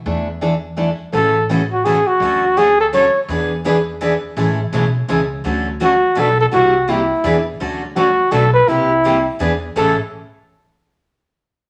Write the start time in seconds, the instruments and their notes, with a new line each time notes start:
0.06 upright bass E2, steel-string acoustic guitar E3 A3 D4 E4 A4
0.41 steel-string acoustic guitar E3 A3 D4 E4 A4
0.77 steel-string acoustic guitar E3 A3 D4 E4 A4
1.12 upright bass A1, steel-string acoustic guitar C#3 E3 A3 C#4 F#4 A4, flugelhorn A4
1.49 steel-string acoustic guitar C#3 E3 A3 C#4 F#4 A4
1.72 flugelhorn F#4
1.85 steel-string acoustic guitar C#3 E3 A3 C#4 F#4 A4, flugelhorn G#4
2.07 flugelhorn F#4
2.20 upright bass D2, steel-string acoustic guitar D3 F#3 A3 C#4 F#4 A4
2.57 steel-string acoustic guitar D3 F#3 A3 C#4 F#4 A4, flugelhorn G#4
2.81 flugelhorn A4
2.93 steel-string acoustic guitar D3 F#3 A3 C#4 F#4 A4, flugelhorn C#5
3.29 upright bass E2, steel-string acoustic guitar E3 B3 D4 G#4 B4
3.65 steel-string acoustic guitar E3 B3 D4 G#4 B4
4.01 steel-string acoustic guitar E3 B3 D4 G#4 B4
4.37 upright bass A1, steel-string acoustic guitar C#3 E3 G#3 A3 C#4 E4 G#4 A4
4.72 upright bass B1, steel-string acoustic guitar C#3 E3 G#3 A3 C#4 E4 G#4 A4
5.08 upright bass C#2, steel-string acoustic guitar C#3 E3 G#3 A3 C#4 E4 G#4 A4
5.44 upright bass D2, steel-string acoustic guitar D3 F#3 A3 C#4 F#4 A4
5.81 steel-string acoustic guitar D3 F#3 A3 C#4 F#4 A4, flugelhorn F#4
6.16 upright bass B1, steel-string acoustic guitar B2 F#3 A3 D4 F#4 B4, flugelhorn A4
6.41 flugelhorn A4
6.53 upright bass C2, steel-string acoustic guitar C3 G3 A#3 E4 G4, flugelhorn F#4
6.88 steel-string acoustic guitar C3 G3 A#3 E4 G4, flugelhorn E4
7.24 upright bass E2, steel-string acoustic guitar E3 B3 D4 G#4 B4
7.60 upright bass D2, steel-string acoustic guitar D3 F#3 A3 C#4 F#4 A4
7.96 steel-string acoustic guitar D3 F#3 A3 C#4 F#4 A4, flugelhorn F#4
8.31 upright bass B1, steel-string acoustic guitar B2 F#3 A3 D4 F#4 B4, flugelhorn A4
8.53 flugelhorn B4
8.68 upright bass C2, steel-string acoustic guitar C3 G3 A#3 E4 G4, flugelhorn E4
9.05 steel-string acoustic guitar C3 G3 A#3 E4 G4
9.40 upright bass E2, steel-string acoustic guitar E3 B3 D4 G#4 B4
9.76 upright bass A1, steel-string acoustic guitar A2 C#3 E3 G#3 A3 C#4 E4 G#4 A4, flugelhorn A4